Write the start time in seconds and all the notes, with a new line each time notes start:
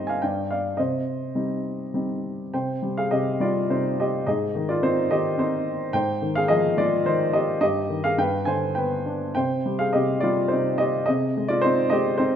Already playing: G2 G3 C4 D#4 G4 C5 D#5
0.07 F5 G#5
0.22 G2 D5 G5
0.51 D5 F5
0.77 C3 C5 D#5
1.35 G3 C4 D#4
1.94 G3 C4 D#4
2.54 C3 C5 G5
2.82 G3
2.98 G#4 F5
3.11 C3 G4 D#5
3.40 G3 F4 D5
3.70 C3 D#4 C5
4.00 G4 D#5
4.27 G#2 G#4 D#5
4.55 D#3
4.69 F4 D5
4.82 C4 D#4 C5
5.10 D#3 G4 D#5
5.38 C4 D#4 C5
5.93 G#2 C5 G5
6.22 D#3
6.35 G#4 F5
6.48 F3 G#4 D#5
6.77 G#3 F4 D5
7.05 D#3 D#4 C5
7.33 G4 D#5
7.61 G2 G4 D#5
7.89 D#3
8.04 G#4 F5
8.18 G2 B4 G5
8.45 D3 C5 G#5
8.75 B3 B4 G5
9.06 D4
9.35 C3 C5 G5
9.66 G3
9.79 G#4 F5
9.93 C3 G4 D#5
10.21 G3 F4 D5
10.48 D#4 C5
10.53 C3
10.78 G4 D#5
11.06 C3 G#4 D#5
11.37 G#3
11.48 F4 D5
11.62 C4 D#4 C5
11.90 G#3 G4 D#5
12.18 C4 D#4 C5